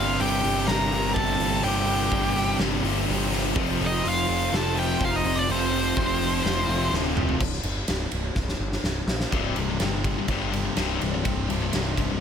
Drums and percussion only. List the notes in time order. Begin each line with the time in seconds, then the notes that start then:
0.20 open hi-hat
0.44 open hi-hat
0.67 snare, open hi-hat
0.92 open hi-hat
1.16 kick, open hi-hat
1.40 open hi-hat
1.63 open hi-hat
1.87 open hi-hat
2.11 kick, open hi-hat
2.36 snare, open hi-hat
2.59 snare, open hi-hat
2.85 open hi-hat
3.09 open hi-hat
3.32 snare, open hi-hat
3.56 kick, open hi-hat
3.81 open hi-hat
4.05 open hi-hat
4.30 open hi-hat
4.54 snare, open hi-hat
4.77 open hi-hat
5.01 kick, open hi-hat
5.25 open hi-hat
5.50 open hi-hat
5.73 open hi-hat
5.97 kick, open hi-hat
6.22 snare, open hi-hat
6.46 snare, open hi-hat
6.70 open hi-hat
6.94 snare
7.17 mid tom
7.29 floor tom
7.40 kick, crash
7.53 snare
7.63 ride
7.88 snare, ride
8.12 ride
8.35 kick, snare
8.49 snare
8.72 snare
8.84 snare
9.08 snare
9.20 snare
9.32 kick, ride
9.56 ride
9.80 snare, ride
10.04 kick, ride
10.28 kick, ride
10.53 ride
10.77 snare, ride
11.01 ride
11.25 kick, ride
11.50 ride
11.73 snare, ride
11.97 kick, ride